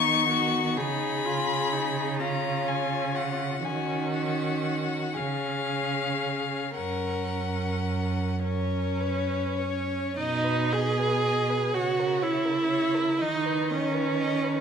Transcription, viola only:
0.00 0.79 B3 soft
0.77 1.27 D#4 medium
1.25 1.74 F4 soft
1.72 2.21 D#4 soft
2.20 3.64 C#4 soft
3.65 5.11 C#4 soft
5.16 6.73 C#4 soft
6.77 8.41 C#4 soft
8.44 10.13 C#4 medium
10.17 10.74 D#4 medium
10.73 11.75 G#4 medium
11.74 12.24 F#4 medium
12.23 13.23 E4 medium
13.21 13.73 D#4 medium
13.71 14.61 C#4 medium

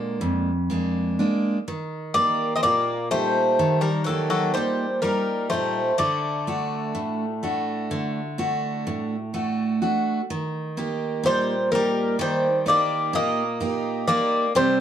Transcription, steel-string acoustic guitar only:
0.00 0.18 A#2 medium
0.00 0.50 G#3 soft
0.00 0.50 A#3 soft
0.00 0.50 D4 soft
0.21 1.15 F2 medium
0.70 1.18 G#3 soft
0.70 1.18 A#3 soft
0.70 1.18 D4 soft
1.19 1.57 G#3 soft
1.19 1.57 A#3 soft
1.19 1.57 D4 medium
1.68 2.61 D#3 medium
2.15 2.92 A#3 medium
2.15 2.92 D#4 soft
2.15 2.93 G4 medium
2.64 3.57 A#2 medium
3.12 3.89 G3 soft
3.12 3.89 D#4 soft
3.12 3.89 G4 medium
3.59 4.53 D#3 medium
4.08 4.85 A#3 soft
4.08 4.85 D#4 soft
4.08 4.85 G4 medium
4.57 5.50 A#2 medium
5.03 5.80 G3 soft
5.03 5.51 D#4 soft
5.03 5.52 G4 soft
5.52 5.91 A#2 medium
5.52 5.91 D#4 soft
5.52 5.91 G4 soft
6.00 6.93 D3 medium
6.47 7.24 A3 soft
6.47 7.24 D4 soft
6.47 7.25 F#4 medium
6.95 7.88 A2 medium
7.43 8.20 A3 soft
7.43 8.20 D4 soft
7.43 8.20 F#4 soft
7.91 8.84 D3 medium
8.38 9.15 A3 medium
8.38 9.15 D4 soft
8.38 9.15 F#4 medium
8.87 9.79 A2 medium
9.34 9.81 A3 soft
9.34 9.81 D4 soft
9.34 9.81 F#4 soft
9.82 10.20 A3 soft
9.82 10.20 D4 soft
9.82 10.20 F#4 medium
10.30 11.22 D#3 medium
10.77 11.53 A#3 medium
10.77 11.53 D#4 soft
10.77 11.53 G4 medium
11.23 12.16 A#2 medium
11.71 12.47 A#3 soft
11.71 12.48 D#4 soft
11.71 12.48 G4 soft
12.19 13.11 D#3 medium
12.66 13.42 A#3 medium
12.66 13.42 D#4 soft
12.66 13.42 G4 medium
13.13 14.05 A#2 medium
13.60 14.07 A#3 soft
13.60 14.08 D#4 soft
13.60 14.08 G4 soft
14.08 14.46 A#3 medium
14.08 14.46 D#4 medium
14.08 14.46 G4 soft
14.55 14.80 C3 medium

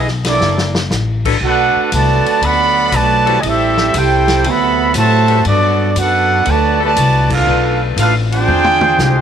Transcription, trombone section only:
0.26 0.72 E3 medium
0.26 0.73 A#3 medium
0.26 0.72 D4 medium
1.41 1.88 A3 medium
1.41 1.88 D4 medium
1.41 1.88 F#4 medium
1.92 2.41 D3 loud
1.92 2.41 F#3 loud
1.92 2.42 A3 loud
2.42 2.92 D3 loud
2.42 2.92 F#3 loud
2.42 2.93 B3 loud
2.93 3.39 D3 loud
2.93 3.39 F#3 loud
2.93 3.39 A3 medium
3.43 3.93 G3 medium
3.43 3.93 C4 medium
3.43 3.93 E4 medium
3.94 4.44 C4 medium
3.94 4.45 E4 medium
3.94 4.44 G4 medium
4.46 4.94 C3 loud
4.46 4.95 F#3 loud
4.46 4.96 B3 loud
4.95 5.42 C3 medium
4.95 5.42 F#3 loud
4.95 5.42 A3 loud
5.48 5.93 F#3 medium
5.48 5.93 B3 medium
5.48 5.93 D4 medium
5.97 6.47 B3 medium
5.97 6.46 D4 medium
5.97 6.46 F#4 medium
6.47 6.80 D3 medium
6.47 6.80 F#3 medium
6.47 6.81 A3 medium
6.82 7.28 D3 medium
6.82 7.28 F#3 medium
6.82 7.28 A3 medium
7.31 7.81 A3 medium
7.31 7.81 D4 medium
7.31 7.81 F4 medium
7.98 8.14 A3 medium
7.98 8.13 D4 medium
7.98 8.13 F4 medium
8.32 8.99 C4 loud
8.32 9.21 D4 loud
8.32 9.21 F4 loud
9.00 9.21 D3 medium
9.00 9.21 G#3 medium
9.00 9.21 C4 medium

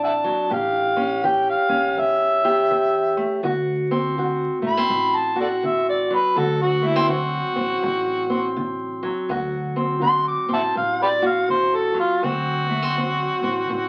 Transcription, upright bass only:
0.00 0.31 A1 medium
0.51 1.54 A1 medium
1.69 1.93 E2 medium
1.97 3.23 E2 medium
3.43 4.46 D2 medium
4.62 4.86 A1 medium
4.90 6.16 A1 medium
6.36 7.39 D2 loud
7.56 7.80 A1 medium
7.83 9.09 A1 medium
9.29 10.32 D2 medium
10.49 10.73 A1 medium
10.77 12.03 A1 medium
12.23 13.25 D2 medium
13.42 13.66 A1 medium
13.70 13.89 A1 medium

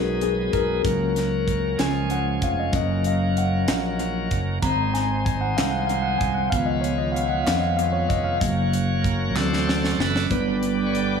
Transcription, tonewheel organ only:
0.00 0.82 G#3 medium
0.00 0.82 B3 medium
0.00 0.83 D#4 soft
0.00 0.82 G#4 medium
0.85 1.80 F#3 medium
0.85 1.80 A#3 soft
0.85 1.78 C#4 soft
0.85 1.80 A#4 medium
1.78 2.74 F3 medium
1.78 2.73 G#3 medium
1.78 2.71 C#4 medium
1.78 2.74 G#4 medium
2.73 4.59 F#3 medium
2.73 4.59 A#3 soft
2.73 4.59 C#4 soft
2.73 4.59 A#4 medium
4.64 6.49 G#3 medium
4.64 6.49 C4 soft
4.64 6.49 D#4 soft
4.64 4.70 B4 soft
4.71 6.52 C5 medium
6.54 8.39 G#3 soft
6.54 8.38 C#4 medium
6.54 6.60 E4 soft
6.54 8.39 B4 medium
6.61 8.42 F4 medium
8.40 9.35 A#3 medium
8.40 9.36 C#4 medium
8.40 9.33 F#4 medium
8.40 9.36 C#5 medium
9.02 9.36 A#4 medium
9.35 10.30 A3 medium
9.35 10.00 D4 medium
9.35 10.27 F#4 medium
9.35 10.27 A4 medium
9.35 10.01 C5 loud
10.01 10.91 D4 medium
10.01 10.59 B4 medium
10.31 11.20 D3 soft
10.31 11.20 G3 soft
10.31 11.20 B3 soft
10.87 10.94 C#5 soft
10.94 11.19 D5 medium

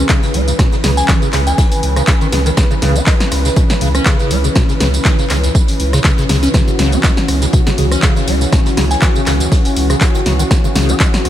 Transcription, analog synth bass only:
0.34 0.52 C#2 medium
0.84 1.02 C#2 loud
1.33 1.51 C#2 medium
1.83 2.01 C#2 loud
2.33 2.51 C#2 medium
2.82 3.00 C#2 loud
3.32 3.50 C#2 medium
3.81 3.99 C#2 loud
4.31 4.49 C#2 medium
4.80 4.98 C#2 loud
5.30 5.48 C#2 medium
5.80 5.98 C#2 medium
6.29 6.47 C#2 medium
6.79 6.97 C#2 loud
7.28 7.46 C#2 medium
7.78 7.96 C#2 loud
8.28 8.46 C#2 medium
8.77 8.95 C#2 loud
9.27 9.45 C#2 medium
9.76 9.94 C#2 medium
10.26 10.44 C#2 medium
10.76 10.93 C#2 loud
11.25 11.29 C#2 medium

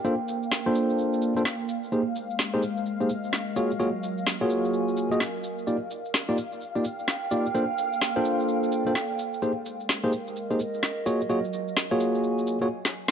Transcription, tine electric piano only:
0.05 0.14 A#3 medium
0.05 0.14 D4 medium
0.05 0.14 F4 medium
0.05 0.14 A4 medium
0.05 0.14 C5 medium
0.66 1.33 A#3 medium
0.66 1.33 D4 medium
0.66 1.33 F4 medium
0.66 1.33 A4 medium
0.66 1.33 C5 loud
1.37 1.42 A#3 medium
1.37 1.42 D4 medium
1.37 1.42 F4 medium
1.37 1.42 A4 medium
1.37 1.42 C5 medium
1.92 2.01 A#3 medium
1.92 2.01 D#4 medium
1.92 2.01 G4 medium
1.92 2.01 G#4 medium
1.92 2.01 C5 medium
2.54 2.62 A#3 medium
2.54 2.62 D#4 medium
2.54 2.62 G4 medium
2.54 2.62 G#4 medium
2.54 2.62 C5 medium
3.01 3.09 A#3 medium
3.01 3.09 D#4 medium
3.01 3.09 G4 medium
3.01 3.09 G#4 medium
3.01 3.09 C5 medium
3.56 3.71 A#3 medium
3.56 3.71 F4 medium
3.56 3.71 F#4 medium
3.56 3.71 G#4 medium
3.56 3.71 C#5 medium
3.80 3.89 A#3 medium
3.80 3.89 F4 medium
3.80 3.89 F#4 medium
3.80 3.89 G#4 medium
3.80 3.89 C#5 medium
4.41 5.08 A#3 medium
4.41 5.08 F4 medium
4.41 5.08 F#4 medium
4.41 5.08 G#4 medium
4.41 5.08 C#5 loud
5.12 5.20 A#3 medium
5.12 5.20 F4 medium
5.12 5.20 F#4 medium
5.12 5.20 G#4 medium
5.12 5.20 D#5 medium
5.67 5.76 A#3 medium
5.67 5.76 D#4 medium
5.67 5.76 F4 medium
5.67 5.76 G4 medium
5.67 5.76 D5 medium
6.29 6.37 A#3 medium
6.29 6.37 D#4 medium
6.29 6.37 F4 medium
6.29 6.37 G4 medium
6.29 6.37 D5 medium
6.76 6.84 A#3 medium
6.76 6.84 D#4 medium
6.76 6.84 F4 medium
6.76 6.84 G4 medium
6.76 6.84 D5 medium
7.31 7.46 A#3 medium
7.31 7.46 D#4 medium
7.31 7.46 F4 medium
7.31 7.46 G4 medium
7.31 7.46 D5 medium
7.55 7.64 A#3 medium
7.55 7.64 D4 medium
7.55 7.64 F4 medium
7.55 7.64 A4 medium
7.55 7.64 C5 medium
8.16 8.83 A#3 medium
8.16 8.83 D4 medium
8.16 8.83 F4 medium
8.16 8.83 A4 medium
8.16 8.83 C5 loud
8.87 8.92 A#3 medium
8.87 8.92 D4 medium
8.87 8.92 F4 medium
8.87 8.92 A4 medium
8.87 8.92 C5 medium
9.42 9.51 A#3 medium
9.42 9.51 D#4 medium
9.42 9.51 G4 medium
9.42 9.51 G#4 medium
9.42 9.51 C5 medium
10.04 10.12 A#3 medium
10.04 10.12 D#4 medium
10.04 10.12 G4 medium
10.04 10.12 G#4 medium
10.04 10.12 C5 medium
10.51 10.59 A#3 medium
10.51 10.59 D#4 medium
10.51 10.59 G4 medium
10.51 10.59 G#4 medium
10.51 10.59 C5 medium
11.06 11.20 A#3 medium
11.06 11.20 F4 medium
11.06 11.20 F#4 medium
11.06 11.20 G#4 medium
11.06 11.20 C#5 medium
11.30 11.39 A#3 medium
11.30 11.39 F4 medium
11.30 11.39 F#4 medium
11.30 11.39 G#4 medium
11.30 11.39 C#5 medium
11.91 12.58 A#3 medium
11.91 12.58 F4 medium
11.91 12.58 F#4 medium
11.91 12.58 G#4 medium
11.91 12.58 C#5 loud
12.62 12.67 A#3 medium
12.62 12.67 F4 medium
12.62 12.67 F#4 medium
12.62 12.67 G#4 medium
12.62 12.67 C#5 medium

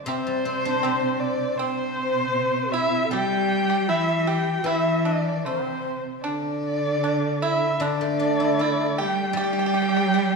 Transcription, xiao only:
0.07 1.56 C5 medium
1.59 2.75 C5 medium
2.74 3.06 E4 medium
3.05 3.13 A4 medium
3.12 3.90 G4 medium
3.88 4.29 E4 medium
4.28 4.68 G4 medium
4.66 5.18 E4 medium
5.44 6.00 C5 medium
6.24 7.44 D4 medium
7.42 7.75 E4 medium
7.75 7.83 E4 soft
7.82 8.98 D4 medium
8.98 9.35 G4 medium
9.37 10.36 G4 medium

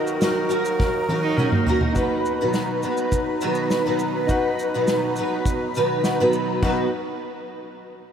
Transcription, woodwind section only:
0.00 1.94 D#2 medium
0.00 1.93 D#3 medium
0.00 1.94 F#4 medium
0.00 1.94 A#4 loud
1.95 6.43 B2 medium
1.95 6.43 F#3 medium
1.95 6.43 D#4 medium
1.95 6.43 B4 medium
6.60 6.88 B2 medium
6.60 6.88 F#3 medium
6.60 6.88 D#4 medium
6.60 6.89 B4 medium

